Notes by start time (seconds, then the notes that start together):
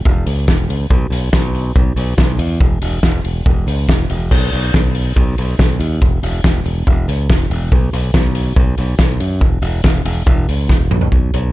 0.05 E1, kick
0.26 C#2, open hi-hat
0.48 E1, kick, snare
0.69 C#2, open hi-hat
0.90 B1, kick
1.10 B1, open hi-hat
1.33 B1, kick, snare
1.55 open hi-hat
1.76 B1, kick
1.96 B1, open hi-hat
2.18 B1, kick, snare
2.39 E2, open hi-hat
2.60 E1, kick
2.82 E1, open hi-hat
3.03 E1, kick, snare
3.24 E1, open hi-hat
3.46 E1, kick
3.67 C#2, open hi-hat
3.88 E1, kick, snare
4.10 E1, open hi-hat
4.31 B1, kick, crash
4.53 B1, open hi-hat
4.74 B1, kick, snare
4.95 open hi-hat
5.16 B1, kick
5.38 B1, open hi-hat
5.59 B1, kick, snare
5.80 D#2, open hi-hat
6.02 E1, kick
6.23 E1, open hi-hat
6.44 E1, kick, snare
6.64 E1, open hi-hat
6.87 E1, kick
7.08 C#2, open hi-hat
7.30 E1, kick, snare
7.50 E1, open hi-hat
7.72 B1, kick
7.93 B1, open hi-hat
8.14 B1, kick, snare
8.35 open hi-hat
8.56 B1, kick
8.78 B1, open hi-hat
8.98 B1, kick, snare
9.20 F#2, open hi-hat
9.41 E1, kick
9.62 E1, open hi-hat
9.84 E1, kick, snare
10.05 E1, open hi-hat
10.26 E1, kick
10.49 C#2, open hi-hat
10.69 E1, kick, snare
10.91 A#1, mid tom
11.01 floor tom
11.12 B1, kick
11.34 B1, closed hi-hat